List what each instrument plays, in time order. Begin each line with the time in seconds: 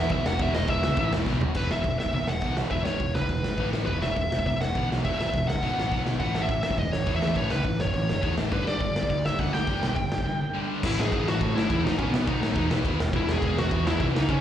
Already playing: overdriven electric guitar E2 B2 E3 B3, lead electric guitar E5
0.09 picked electric bass B1, overdriven electric guitar E2 B2 E3, lead electric guitar E5, kick, ride
0.26 picked electric bass E1, lead electric guitar F#5, snare
0.39 picked electric bass E1, overdriven electric guitar E2 B2 E3, lead electric guitar E5, kick, ride
0.54 picked electric bass E1, lead electric guitar D#5, snare
0.67 picked electric bass E1, overdriven electric guitar E2 B2 E3, lead electric guitar E5, kick, ride
0.83 picked electric bass C#2, snare
0.97 picked electric bass A1, overdriven electric guitar E2 B2 E3, kick, ride
1.11 picked electric bass E1, snare
1.26 picked electric bass B1, overdriven electric guitar E2 B2 E3, kick, snare
1.41 picked electric bass B1, floor tom
1.55 picked electric bass E1, overdriven electric guitar E2 B2 E3, lead electric guitar B4, kick, crash
1.70 picked electric bass E1, lead electric guitar E5, snare
1.84 picked electric bass E1, overdriven electric guitar E2 B2, kick, open hi-hat
1.99 picked electric bass E1, lead electric guitar E5, snare
2.06 kick
2.12 picked electric bass B1, overdriven electric guitar E2 B2, lead electric guitar E5, kick, open hi-hat
2.27 picked electric bass E1, lead electric guitar F#5, snare
2.41 picked electric bass B1, overdriven electric guitar E2 B2 E3, kick, open hi-hat
2.57 picked electric bass B1, snare
2.70 picked electric bass E1, overdriven electric guitar E2 B2 E3, lead electric guitar E5, kick, open hi-hat
2.85 picked electric bass G#1, lead electric guitar C#5, snare
2.99 picked electric bass E1, overdriven electric guitar E2 B2, kick, open hi-hat
3.14 picked electric bass C#2, lead electric guitar B4, snare
3.22 kick
3.29 picked electric bass E1, overdriven electric guitar E2 B2, kick, open hi-hat
3.43 picked electric bass G#1, snare
3.57 picked electric bass A1, overdriven electric guitar A2 E3 A3, kick, open hi-hat
3.73 picked electric bass A1, snare
3.86 picked electric bass E1, overdriven electric guitar E2 B2 E3, lead electric guitar B4, kick, open hi-hat
4.02 picked electric bass E1, lead electric guitar E5, snare
4.16 picked electric bass E1, overdriven electric guitar E2 B2, kick, open hi-hat
4.32 picked electric bass E1, snare
4.39 kick
4.46 picked electric bass B1, overdriven electric guitar E2 B2, lead electric guitar E5, kick, open hi-hat
4.61 picked electric bass E1, lead electric guitar F#5, snare
4.75 picked electric bass B1, overdriven electric guitar E2 B2 E3, kick, open hi-hat
4.90 picked electric bass B1, snare
5.04 picked electric bass E1, overdriven electric guitar E2 B2 E3, lead electric guitar E5, kick, open hi-hat
5.18 picked electric bass G#1, lead electric guitar E5, snare
5.33 picked electric bass E1, overdriven electric guitar E2 B2, kick, open hi-hat
5.47 picked electric bass C#2, lead electric guitar F#5, snare
5.56 kick
5.62 picked electric bass B1, overdriven electric guitar B2 F#3 B3, kick, open hi-hat
5.77 picked electric bass A1, snare
5.91 picked electric bass B1, overdriven electric guitar B2 F#3 B3, kick, open hi-hat
6.05 picked electric bass B1, snare
6.19 picked electric bass A1, overdriven electric guitar A2 E3 A3, lead electric guitar F#5, kick, open hi-hat
6.35 picked electric bass A1, snare
6.42 lead electric guitar E5
6.48 picked electric bass A1, overdriven electric guitar A2 E3, kick, open hi-hat
6.63 picked electric bass A1, lead electric guitar E5, snare
6.71 kick
6.78 picked electric bass E1, overdriven electric guitar A2 E3, lead electric guitar D#5, kick, open hi-hat
6.92 picked electric bass A1, lead electric guitar C#5, snare
7.06 picked electric bass E2, overdriven electric guitar A2 E3 A3, kick, open hi-hat
7.16 lead electric guitar E5
7.22 picked electric bass E2, snare
7.35 picked electric bass A1, overdriven electric guitar A2 E3 A3, lead electric guitar C#5, kick, open hi-hat
7.50 picked electric bass C#2, lead electric guitar B4, snare
7.63 picked electric bass A1, overdriven electric guitar A2 E3, kick, open hi-hat
7.79 picked electric bass F#1, lead electric guitar C#5, snare
7.87 kick
7.94 picked electric bass A1, overdriven electric guitar A2 E3, kick, open hi-hat
8.09 picked electric bass F#1, snare
8.22 picked electric bass E2, overdriven electric guitar A2 E3 A3, kick, open hi-hat
8.38 picked electric bass A1, snare
8.51 picked electric bass G1, overdriven electric guitar G2 D3 G3, lead electric guitar B4, kick, open hi-hat
8.66 picked electric bass G1, lead electric guitar D5, snare
8.80 picked electric bass G1, overdriven electric guitar G2 D3, kick, open hi-hat
8.95 picked electric bass G1, snare
9.03 kick
9.10 picked electric bass D2, overdriven electric guitar G2 D3, lead electric guitar D5, kick, open hi-hat
9.24 picked electric bass G1, lead electric guitar E5, snare
9.39 picked electric bass D2, overdriven electric guitar G2 D3 G3, lead electric guitar F#5, kick, open hi-hat
9.52 picked electric bass D2, lead electric guitar G5, snare
9.66 picked electric bass G1, overdriven electric guitar G2 D3 G3, kick, open hi-hat
9.83 picked electric bass B1, snare
9.96 picked electric bass G1, overdriven electric guitar G2 D3, kick, open hi-hat
10.12 picked electric bass G1, snare
10.18 kick
10.26 overdriven electric guitar G2 D3
10.53 overdriven electric guitar G2 D3 G3
10.83 picked electric bass A1, overdriven electric guitar A2 E3 A3, lead electric guitar E4, kick, crash
10.99 picked electric bass A1, lead electric guitar G#4, snare
11.12 picked electric bass A1, overdriven electric guitar A2 E3 A3, kick, ride
11.28 picked electric bass A1, lead electric guitar F#4, snare
11.41 overdriven electric guitar A2 E3 A3, picked electric bass A2, kick, ride
11.55 picked electric bass A2, lead electric guitar E4, snare
11.69 picked electric bass E2, overdriven electric guitar A2 E3 A3, lead electric guitar E4, kick, ride
11.83 picked electric bass A#1, lead electric guitar D#4, snare
11.98 picked electric bass B1, overdriven electric guitar B2 F#3 B3, lead electric guitar C#4, kick, ride
12.11 picked electric bass B1, lead electric guitar B3, snare
12.27 picked electric bass B1, overdriven electric guitar B2 F#3 B3, lead electric guitar D#4, kick, ride
12.41 picked electric bass A2, snare
12.55 picked electric bass E2, overdriven electric guitar B2 F#3 B3, kick, ride
12.70 picked electric bass B1, snare
12.85 picked electric bass D#2, overdriven electric guitar B2 F#3 B3, kick, ride
13.00 picked electric bass E1, snare
13.13 picked electric bass E1, overdriven electric guitar E2 B2 E3, lead electric guitar E4, kick, ride
13.27 picked electric bass E1, snare
13.32 lead electric guitar G#4
13.42 picked electric bass E1, overdriven electric guitar E2 B2 E3, lead electric guitar G#4, kick, ride
13.58 picked electric bass E1, lead electric guitar F#4, snare
13.70 overdriven electric guitar E2 B2 E3, picked electric bass E2, kick, ride
13.87 picked electric bass E2, lead electric guitar E4, snare
14.00 picked electric bass C2, overdriven electric guitar E2 B2 E3, lead electric guitar E4, kick, ride
14.15 picked electric bass C#2, lead electric guitar D#4, snare
14.29 picked electric bass C#2, overdriven electric guitar C#3 G#3 C#4, lead electric guitar C#4, kick, ride